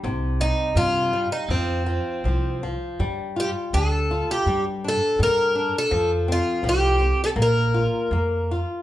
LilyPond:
<<
  \new Staff \with { instrumentName = "Twelve-string acoustic guitar" } { \time 2/4 \key f \mixolydian \tempo 4 = 82 r8 ees'8 f'8. ees'16 | c'4. r8 | r8 g'8 a'8. g'16~ | g'16 r16 a'8 bes'8. a'16~ |
a'16 r16 f'8 g'8. a'16 | bes'4. r8 | }
  \new Staff \with { instrumentName = "Nylon-string guitar" } { \clef bass \time 2/4 \key f \mixolydian c8 g8 c8 g8 | f8 f8 f8 f8 | g8 f'8 d'8 f'8 | g8 d'8 g8 d'8 |
f8 c'8 f8 c'8 | bes8 f'8 bes8 f'8 | }
  \new Staff \with { instrumentName = "Upright bass" } { \clef bass \time 2/4 \key f \mixolydian c,4 g,4 | f,4 c,4 | g,4 d,4 | g,4 g,4 |
f,4 c,4 | bes,,4 f,4 | }
>>